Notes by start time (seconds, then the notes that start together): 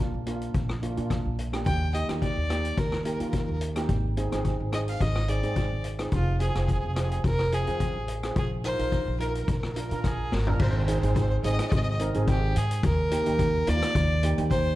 Already playing: A#1 A#3 D4 F4
0.14 A#1
0.26 A#3 D4 F4, closed hi-hat
0.42 closed hi-hat
0.54 A#1, kick, closed hi-hat
0.69 cross-stick
0.82 A#3 D4 F4, closed hi-hat
0.97 A#2 A#3 D4 F4, closed hi-hat
1.10 kick, cross-stick, closed hi-hat
1.26 A#1
1.39 closed hi-hat
1.52 A#3 D4 G4, cross-stick, closed hi-hat
1.65 D#2 G5, kick, closed hi-hat
1.94 A#3 D#4 G4 D#5, closed hi-hat
2.08 D#2 A#3 D#4 G4, cross-stick, closed hi-hat
2.22 D5, kick, closed hi-hat
2.37 D#2
2.49 A#3 D#4 G4, cross-stick, closed hi-hat
2.65 closed hi-hat
2.77 D#2 A#4, kick, closed hi-hat
2.92 cross-stick
3.05 A#3 D#4 G4 A#4, closed hi-hat
3.14 A#4
3.20 D#3 A#3 D#4 F4 A#4, closed hi-hat
3.30 A#4, kick, closed hi-hat
3.37 A#4
3.45 D#2 A#4
3.53 A#4
3.61 closed hi-hat
3.76 A#3 D#4 G4, cross-stick, closed hi-hat
3.89 G#1, kick, closed hi-hat
4.17 C4 D#4 G#4, closed hi-hat
4.31 G#1 C4 D#4 G#4, cross-stick, closed hi-hat
4.45 kick, closed hi-hat
4.60 G#1
4.72 C4 D#4 G#4 D#5, cross-stick, closed hi-hat
4.88 F5, closed hi-hat
5.00 G#1 D#5, kick, closed hi-hat
5.15 cross-stick
5.28 C4 D#4 G#4 D5, closed hi-hat
5.43 G#2 C4 D#4 G#4, closed hi-hat
5.56 kick, closed hi-hat
5.72 G#1
5.84 closed hi-hat
5.99 C4 D#4 G#4, cross-stick, closed hi-hat
6.12 F1 F4, kick, closed hi-hat
6.40 C4 F4 G#4, closed hi-hat
6.50 G#4
6.55 F1 C4 F4 G#4, cross-stick, closed hi-hat
6.65 G#4, kick, closed hi-hat
6.73 G#4
6.81 F1 G#4
6.87 G#4
6.95 C4 F4 G#4, cross-stick, closed hi-hat
7.02 G#4
7.11 G#4, closed hi-hat
7.24 F1 A#4, kick, closed hi-hat
7.39 cross-stick
7.52 C4 F4 G#4, closed hi-hat
7.67 F2 C4 F4 G#4, closed hi-hat
7.80 kick, closed hi-hat
7.96 A1
8.08 closed hi-hat
8.23 C4 F4 G#4, cross-stick, closed hi-hat
8.36 A#1 G#4, kick, closed hi-hat
8.64 D#4 F4 A#4 C5, closed hi-hat
8.79 A#1 D#4 F4 A#4, closed hi-hat
8.92 kick, closed hi-hat
9.07 A#1
9.20 D#4 F4 A#4, closed hi-hat
9.28 A#4
9.35 A#4, closed hi-hat
9.43 A#4
9.48 A#1 A#4, kick, closed hi-hat
9.58 A#4
9.63 A#4, cross-stick
9.72 D4 A#4, closed hi-hat
9.76 F4 A#4
9.88 A#2 D4 F4 A#4, closed hi-hat
9.92 A#4
10.03 A#1 G#4 A#4, kick, cross-stick, closed hi-hat
10.32 G#1 A#4, snare
10.47 D4 F4 A#4, floor tom
10.59 G#1 C5, kick, crash
10.70 C5
10.77 C5
10.85 C4 D#4 G#4 C5, closed hi-hat
10.92 C5
11.00 G#1 C4 D#4 C5, closed hi-hat
11.04 G#4 C5
11.14 C5, kick, closed hi-hat
11.21 C5
11.29 C5
11.43 G#1 C4 D#4 G#4 D#5, closed hi-hat
11.52 D#5
11.59 D#5, cross-stick, closed hi-hat
11.67 D#5
11.72 G#1 D#5, kick, closed hi-hat
11.83 D#5
11.90 D#5
11.99 C4 D#4 A#4, closed hi-hat
12.14 G#1 C4 D#4 G#4, closed hi-hat
12.27 G4, kick, closed hi-hat
12.56 G#2 G#4, closed hi-hat
12.71 closed hi-hat
12.83 D#2 A#4, kick, closed hi-hat
13.11 A#3 D#4 G4, closed hi-hat
13.26 D#2 A#3 D#4 G4, closed hi-hat
13.39 kick, closed hi-hat
13.67 D#2 A#3 D#4 F4 D5, closed hi-hat
13.82 cross-stick, closed hi-hat
13.95 D#2, kick, closed hi-hat
14.23 A#3 D#4 G4, closed hi-hat
14.38 D#2 A#3 D#4 G4, closed hi-hat
14.50 C5, kick, closed hi-hat